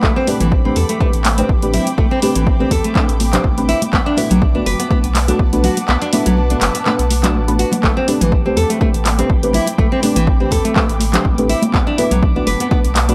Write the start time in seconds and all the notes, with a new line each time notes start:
Already playing: B5
0.03 A1 A3 C4 G5 D6, kick, clap, high conga
0.16 C4
0.27 A3 C4 D4 G4 B4, open hi-hat, muted conga
0.40 A1 E3, closed hi-hat, high conga, low conga
0.51 kick, muted conga
0.65 A3 C4 D4 G4 B4
0.76 E2 A4, open hi-hat, muted conga
0.89 A3, closed hi-hat
1.01 A3 C4 D4 G4 B4, kick, muted conga, high conga
1.13 A1, closed hi-hat
1.25 clap, open hi-hat, high conga
1.38 A3 C4 D4 G4 B4, closed hi-hat, muted conga
1.49 A1, kick
1.62 A3 C4 D4 G4 B4, closed hi-hat, muted conga
1.74 E4, open hi-hat, high conga, low conga
1.86 closed hi-hat, muted conga
1.98 A1 A3, kick, high conga
2.11 C4
2.22 A3 C4 D4 G4 B4, open hi-hat, muted conga
2.35 A1 E3, closed hi-hat, high conga
2.47 kick, muted conga
2.60 A3 C4 D4 G4 B4
2.71 E2 A4, kick, open hi-hat, muted conga
2.84 A3, closed hi-hat
2.95 A3 C4 D4 G4 B4, kick, clap, muted conga, high conga
3.09 A1, closed hi-hat
3.20 open hi-hat, high conga
3.33 A3 C4 D4 G4 B4, clap, closed hi-hat, muted conga, low conga
3.44 A1, kick, high conga
3.57 A3 C4 D4 G4 B4, closed hi-hat, muted conga
3.69 E4, open hi-hat
3.82 closed hi-hat, muted conga, high conga
3.93 B1 B3 B4 F#5 A5, kick, clap, high conga
4.06 D4
4.17 A3 B3 D4 E4 F#4 B4, open hi-hat, muted conga
4.30 B1 F#3, closed hi-hat, high conga, low conga
4.42 kick, muted conga
4.55 A3 B3 D4 F#4 B4
4.66 F#1 B4, open hi-hat, muted conga
4.79 B3, closed hi-hat
4.90 A3 B3 D4 F#4 B4, kick, muted conga, high conga
5.04 B1, closed hi-hat
5.15 clap, open hi-hat, high conga
5.28 A3 B3 D4 F#4 B4, closed hi-hat, muted conga
5.39 B1, kick
5.53 A3 B3 D4 F#4 B4, closed hi-hat, muted conga
5.64 F#4, open hi-hat, high conga, low conga
5.77 closed hi-hat, muted conga
5.88 B1 B3, clap, high conga
6.02 D4, closed hi-hat
6.13 A3 B3 D4 E4 F#4 B4, open hi-hat, muted conga
6.26 B1 F#3, closed hi-hat, high conga, low conga
6.37 muted conga
6.50 A3 B3 D4 F#4 B4, closed hi-hat
6.61 F#1 B4, clap, open hi-hat, muted conga
6.75 B3, closed hi-hat
6.86 A3 B3 D4 F#4 B4, clap, muted conga, high conga
6.99 B1, closed hi-hat
7.11 open hi-hat, high conga
7.23 A3 B3 D4 F#4 B4, clap, closed hi-hat, muted conga, low conga
7.35 A1, high conga
7.48 A3 B3 D4 F#4 B4, closed hi-hat, muted conga
7.59 F#4, open hi-hat
7.71 closed hi-hat, muted conga, high conga, low conga
7.83 A1 A3 C4 G5 B5 D6, kick, clap, high conga
7.97 C4
8.08 A3 C4 D4 G4 B4, open hi-hat, muted conga
8.21 A1 E3, closed hi-hat, high conga, low conga
8.32 kick, muted conga
8.46 A3 C4 D4 G4 B4
8.57 E2 A4, open hi-hat, muted conga
8.70 A3, closed hi-hat
8.81 A3 C4 D4 G4 B4, kick, muted conga, high conga
8.94 A1, closed hi-hat
9.05 clap, open hi-hat, high conga
9.18 A3 C4 D4 G4 B4, closed hi-hat, muted conga
9.30 A1, kick
9.43 A3 C4 D4 G4 B4, closed hi-hat, muted conga
9.53 E4, open hi-hat, high conga, low conga
9.67 closed hi-hat, muted conga
9.78 A1 A3, kick, high conga
9.92 C4
10.02 A3 C4 D4 G4 B4, open hi-hat, muted conga
10.15 A1 E3, closed hi-hat, high conga
10.27 kick, muted conga
10.40 A3 C4 D4 G4 B4
10.51 E2 A4, kick, open hi-hat, muted conga
10.65 A3, closed hi-hat
10.76 A3 C4 D4 G4 B4, kick, clap, muted conga, high conga
10.89 A1, closed hi-hat
11.00 open hi-hat, high conga
11.13 A3 C4 D4 G4 B4, clap, closed hi-hat, muted conga, low conga
11.25 A1, kick, high conga
11.38 A3 C4 D4 G4 B4, closed hi-hat, muted conga
11.49 E4, open hi-hat
11.62 closed hi-hat, muted conga, high conga
11.72 B1 B3 B4 F#5 A5, kick, clap, high conga
11.87 D4
11.98 A3 B3 D4 E4 F#4 B4, open hi-hat, muted conga
12.11 B1 F#3, closed hi-hat, high conga, low conga
12.23 kick, muted conga
12.36 A3 B3 D4 F#4 B4
12.47 F#1 B4, open hi-hat, muted conga
12.60 B3, closed hi-hat
12.71 A3 B3 D4 F#4 B4, kick, muted conga, high conga
12.85 B1, closed hi-hat
12.95 clap, open hi-hat, high conga
13.09 A3 B3 D4 F#4 B4, closed hi-hat, muted conga